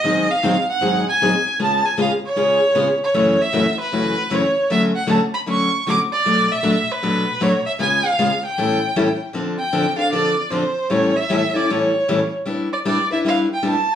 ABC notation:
X:1
M:4/4
L:1/16
Q:"Swing" 1/4=155
K:F#m
V:1 name="Violin"
^d2 ^e4 f4 g6 | a2 g2 ^e2 c8 c2- | c2 e4 B6 c4 | e2 f2 a2 b2 c'4 d'2 d2- |
d2 e4 B6 c2 e2 | g2 ^e4 =g8 z2 | [K:Dm] z2 g4 f2 d4 c4 | ^c2 e4 d2 c6 z2 |
z2 d2 d2 e2 f2 g2 a2 z2 |]
V:2 name="Steel-string acoustic guitar"
[G,,^D,F,^B,^DG]2 z2 [G,,D,F,B,DG] z3 [G,,D,F,B,DG]2 z2 [G,,D,F,B,DG] z3 | [C,G,B,^EG]2 z2 [C,G,B,EG] z3 [C,G,B,EG]2 z2 [C,G,B,EG] z3 | [F,,C,E,A,CF]2 z2 [F,,C,E,A,CF] z3 [F,,C,E,A,CF]2 z2 [F,,C,E,A,CF] z3 | [D,F,A,CF]2 z2 [D,F,A,CF] z3 [D,F,A,CF]2 z2 [D,F,A,CF] z3 |
[B,,F,A,DF]2 z2 [B,,F,A,DF] z3 [B,,F,A,DF]2 z2 [B,,F,A,DF] z3 | [C,G,B,^EG]2 z2 [C,G,B,EG] z3 [A,,=E,=G,C=EA]2 z2 [A,,E,G,CEA] z3 | [K:Dm] [D,F,CDA]2 z2 [D,F,CDA] z [CDA]2 [D,F,CDA]2 z2 [D,F,CDA] z3 | [A,,E,G,^CEA]2 z2 [A,,E,G,CEA] z [G,CEA]2 [A,,E,G,CEA]2 z2 [A,,E,G,CEA] z3 |
[G,DE=B]2 z2 [G,DEB] z [DEB]2 [G,DEB]2 z2 [G,DEB] z3 |]